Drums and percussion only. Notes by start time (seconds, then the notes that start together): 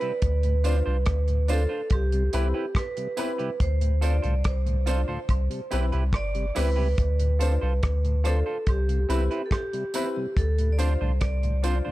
0.01 closed hi-hat
0.22 kick, closed hi-hat
0.43 closed hi-hat
0.64 closed hi-hat, tambourine
1.06 kick, cross-stick, closed hi-hat
1.28 closed hi-hat
1.48 closed hi-hat, tambourine
1.90 kick, closed hi-hat, high woodblock
2.12 closed hi-hat
2.33 closed hi-hat, tambourine
2.75 kick, cross-stick, closed hi-hat, high woodblock
2.97 closed hi-hat
3.17 closed hi-hat, tambourine
3.39 closed hi-hat
3.60 kick, closed hi-hat
3.81 closed hi-hat
4.02 closed hi-hat, tambourine
4.24 closed hi-hat
4.44 kick, cross-stick, closed hi-hat
4.67 closed hi-hat
4.87 closed hi-hat, tambourine
5.29 kick, closed hi-hat, high woodblock
5.51 closed hi-hat
5.71 closed hi-hat, tambourine
5.93 closed hi-hat
6.13 kick, cross-stick, closed hi-hat, high woodblock
6.35 closed hi-hat
6.56 cross-stick, open hi-hat, tambourine
6.98 kick, closed hi-hat
7.20 closed hi-hat
7.41 closed hi-hat, tambourine
7.83 kick, cross-stick, closed hi-hat
8.05 closed hi-hat
8.25 cross-stick, closed hi-hat, tambourine
8.67 kick, closed hi-hat, high woodblock
8.89 closed hi-hat
9.10 closed hi-hat, tambourine
9.31 closed hi-hat
9.51 kick, cross-stick, closed hi-hat, high woodblock
9.73 closed hi-hat
9.94 closed hi-hat, tambourine
10.37 kick, closed hi-hat
10.58 closed hi-hat
10.79 closed hi-hat, tambourine
11.21 kick, cross-stick, closed hi-hat
11.43 closed hi-hat
11.64 closed hi-hat, tambourine